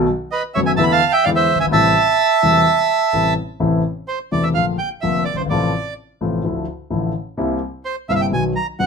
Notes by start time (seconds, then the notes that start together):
0.31 B4 D#5
0.54 F#1 F#2 D#3 A3 B3 F#4 C#5 E5
0.66 E5 G#5
0.77 E2 D3 E3 A3 B3 E4 E5 A5
0.84 B5
0.92 F5 A5
1.12 E5 G5
1.24 E2 D3 E3 G#3 B3 E4 D5 F5
1.36 C5 E5
1.55 F#1
1.60 G1 E5 G#5
1.66 G#1
1.71 A1 A2 C3 G3 A3 E4 E5 A5
2.42 E1 E2 C3 G3 A3 E4
3.13 A1 A2 C3 G3 A3 E4
3.60 A1 A2 C3 E3 A3 E4
4.08 C5
4.32 E1 E2 C3 E3 A3 E4 D5
4.43 E5
4.54 A#1 A#2 D3 A3 A#3 F4 F5
4.78 G5
5.01 F1 F2 D3 A3 A#3 F4 E5
5.25 D5
5.34 F#1 C5
5.39 G1
5.46 G#1
5.50 A1 A2 C3 F3 A3 F4 D5
6.21 A1 A2 C3 F3 A3 F4
6.44 D2 D3 F3 A3 E4
6.90 A1 A2 D3 F3 A3 E4
7.37 C2 C3 G3 A#3 E4
7.85 C5
8.09 G1 G2 C3 G3 A#3 E4 E5 F5
8.15 E5
8.21 G5
8.32 B1 B2 D#3 F#3 B3 F#4 G#5
8.56 A#5
8.79 F#1 F#2 D#3 F#3 B3 F#4 F#5